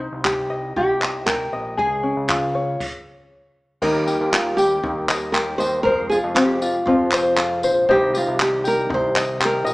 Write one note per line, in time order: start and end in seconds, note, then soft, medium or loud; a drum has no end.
0.00 1.83 D#4 medium
0.00 1.77 C5 medium
0.12 0.73 C2 medium
0.24 0.72 G4 medium
0.24 0.75 G4 medium
0.24 kick loud
0.24 clap loud
0.24 clap medium
0.50 0.99 D#5 medium
0.76 1.49 C2 loud
0.76 1.26 G4 medium
0.76 kick loud
1.00 1.51 D#5 medium
1.00 clap medium
1.26 1.83 G4 medium
1.26 1.79 A#4 medium
1.26 kick loud
1.26 clap medium
1.53 1.80 A#1 medium
1.53 1.83 D#5 medium
1.77 2.13 C#2 loud
1.77 2.84 G#4 medium
1.77 3.27 G#4 loud
1.77 kick loud
2.03 2.85 C#4 medium
2.16 2.77 C#2 medium
2.29 2.85 F4 medium
2.29 kick loud
2.29 clap medium
2.29 clap loud
2.55 2.85 C#5 medium
2.80 kick loud
2.80 crash medium
3.82 4.17 D#2 loud
3.82 5.84 D#3 medium
3.82 5.84 G3 medium
3.82 5.84 A#3 medium
3.82 4.32 D#4 loud
3.82 5.84 G4 medium
3.82 5.85 A#4 medium
3.82 5.07 D#5 medium
3.82 kick loud
3.82 crash loud
4.07 4.57 G4 medium
4.07 tambourine medium
4.21 4.81 D#2 medium
4.32 4.82 D#4 medium
4.32 4.56 F4 medium
4.32 clap loud
4.32 clap medium
4.57 5.32 G4 loud
4.57 5.32 G4 medium
4.57 tambourine medium
4.83 5.56 D#2 loud
4.83 5.90 D#4 medium
4.83 kick loud
5.08 5.58 D#5 medium
5.08 clap loud
5.08 tambourine medium
5.32 5.90 G4 medium
5.32 5.57 A#4 medium
5.32 clap medium
5.32 clap loud
5.58 5.87 D#2 loud
5.58 5.82 C5 loud
5.58 5.85 D#5 medium
5.58 tambourine medium
5.83 6.20 F2 loud
5.83 9.74 C3 medium
5.83 7.87 F3 medium
5.83 7.87 G#3 medium
5.83 7.87 F4 medium
5.83 6.09 A#4 loud
5.83 7.13 C5 medium
5.83 kick loud
6.09 6.61 F4 medium
6.09 6.16 G#4 medium
6.09 tambourine medium
6.24 6.84 F2 medium
6.35 6.87 C4 medium
6.35 6.88 G4 medium
6.35 clap medium
6.35 clap loud
6.62 7.37 F4 medium
6.62 tambourine medium
6.86 7.65 F2 loud
6.86 7.94 C4 medium
6.86 7.58 F4 medium
6.86 kick loud
7.11 7.64 C5 medium
7.11 clap loud
7.11 tambourine medium
7.37 7.88 F4 medium
7.37 clap loud
7.37 clap medium
7.63 7.87 A#1 medium
7.63 7.89 C5 medium
7.63 tambourine medium
7.89 8.24 C2 loud
7.89 9.74 D#3 medium
7.89 9.74 G3 medium
7.89 9.74 D#4 medium
7.89 8.16 G4 loud
7.89 8.64 C5 medium
7.89 9.14 D#5 medium
7.89 kick loud
8.14 8.39 F4 medium
8.14 8.38 G4 medium
8.14 tambourine medium
8.27 8.88 C2 loud
8.39 8.88 D#4 medium
8.39 8.67 G4 medium
8.39 clap loud
8.39 clap medium
8.64 9.39 G4 medium
8.64 8.90 A#4 loud
8.64 tambourine medium
8.89 9.63 C2 loud
8.89 9.74 D#4 medium
8.89 kick loud
8.94 9.45 C5 loud
9.15 9.63 D#5 medium
9.15 clap loud
9.15 tambourine medium
9.40 9.74 G4 medium
9.40 clap loud
9.40 clap medium
9.45 9.74 A#4 loud
9.65 9.74 A#1 loud
9.65 9.74 D#5 medium
9.65 tambourine medium